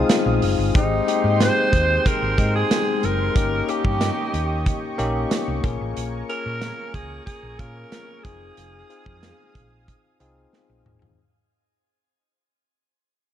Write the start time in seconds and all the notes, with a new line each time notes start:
Already playing: G#3 C4 D#4 F4 G#4 F5 D#6
0.09 snare, closed hi-hat, tambourine
0.26 A#1
0.42 F#1, open hi-hat
0.59 G1
0.74 G#1 G#3 C4 D#4 G4 G5 C6, kick, closed hi-hat
1.07 G#3 A#3 D#4 G4, closed hi-hat
1.14 C4
1.24 G#2
1.40 C5, snare, closed hi-hat, tambourine
1.73 D#2, kick, closed hi-hat
2.06 A#4, kick, closed hi-hat
2.22 G#1
2.38 G#2 G#3 C4 D#4 G5, kick, closed hi-hat
2.56 G#4
2.71 snare, closed hi-hat, tambourine
3.03 F#1 A#4, closed hi-hat
3.35 G1 A#3 C#4 D#4 G4 D#5 C#6, kick, closed hi-hat
3.68 A#3 C#4 D#4 G4, closed hi-hat
3.85 G2, kick
4.01 snare, closed hi-hat, tambourine
4.34 D#2, closed hi-hat
4.66 kick, closed hi-hat
4.98 A#1 A#3 C#4 D#4 G4, closed hi-hat
5.31 snare, closed hi-hat, tambourine
5.48 C2
5.63 A#1 A#3 C#4 F4 G#4 A#4 G#5, kick, closed hi-hat
5.81 A1
5.97 A#1, closed hi-hat
6.29 A#3 C#4 F4 G#4 A#4, closed hi-hat
6.46 A#2
6.61 snare, closed hi-hat, tambourine
6.94 C#2 G#4, kick, closed hi-hat
7.26 G#4, kick, closed hi-hat
7.43 A#1
7.59 A#2 A#3 C#4 F4 G#4 A#4, kick, closed hi-hat
7.92 snare, closed hi-hat, tambourine
8.23 F1 C4 D#4 F4 G#4 F5 D#6, kick, closed hi-hat
8.57 F1, closed hi-hat
8.89 C4 D#4 F4 G#4, closed hi-hat
9.06 F2, kick
9.23 snare, closed hi-hat, tambourine
9.55 A#1, kick, closed hi-hat
9.88 kick, closed hi-hat
10.20 C2 C4 D#4 F4 G#4, closed hi-hat
10.53 snare
10.69 A#1
10.86 mid tom
11.02 E1, floor tom